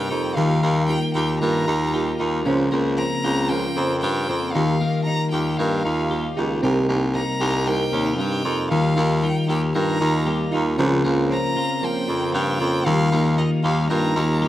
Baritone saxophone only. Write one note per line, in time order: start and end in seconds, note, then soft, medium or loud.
0.11 0.33 F2 medium
0.37 0.59 D#2 loud
0.63 0.96 D#2 loud
1.15 1.37 D#2 medium
1.42 1.64 G2 medium
1.68 2.12 D#2 loud
2.20 2.47 D#2 medium
2.46 2.68 C#2 loud
2.72 3.05 C#2 medium
3.24 3.68 C#2 loud
3.76 3.99 F2 medium
4.03 4.25 G2 loud
4.29 4.51 F2 loud
4.55 4.77 D#2 loud
5.33 5.55 D#2 medium
5.59 5.81 G2 loud
5.85 6.29 D#2 medium
6.37 6.59 C#2 medium
6.63 6.85 C2 loud
6.89 7.22 C2 loud
7.41 7.85 C2 loud
7.93 8.21 D#2 medium
8.19 8.41 G2 loud
8.45 8.67 F2 medium
8.71 8.93 D#2 loud
8.96 9.30 D#2 loud
9.49 9.71 D#2 medium
9.75 9.97 G2 medium
10.01 10.45 D#2 loud
10.53 10.75 D#2 medium
10.79 11.01 C#2 loud
11.04 11.38 C#2 loud
12.09 12.31 F2 medium
12.35 12.57 G2 loud
12.60 12.83 F2 loud
12.86 13.08 D#2 loud
13.12 13.45 D#2 loud
13.64 13.86 D#2 loud
13.90 14.12 G2 loud
14.16 14.48 D#2 medium